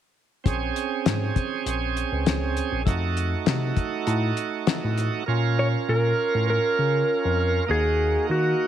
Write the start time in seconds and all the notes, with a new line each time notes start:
0.44 A#1 C4 C#4 G#4, kick, closed hi-hat
0.76 closed hi-hat
1.06 G#2, snare, closed hi-hat
1.36 kick, closed hi-hat
1.66 A#1, closed hi-hat
1.97 closed hi-hat
2.12 C#2
2.26 snare, closed hi-hat
2.57 closed hi-hat
2.73 A#1
2.86 F2 A3 D#4 F#4, kick, closed hi-hat
3.17 closed hi-hat
3.46 C3, snare, closed hi-hat
3.77 kick, closed hi-hat
4.07 A2, closed hi-hat
4.37 closed hi-hat
4.67 snare, closed hi-hat
4.84 A2
4.98 closed hi-hat
5.26 A#2 C#4 F4 A#4
5.59 C#5
5.88 A#2 A#4
6.34 A2
6.50 A#4
6.79 C#3
7.25 F2
7.67 D#2 A#3 D#4 F#4
7.71 G#4
8.29 D#3 F#4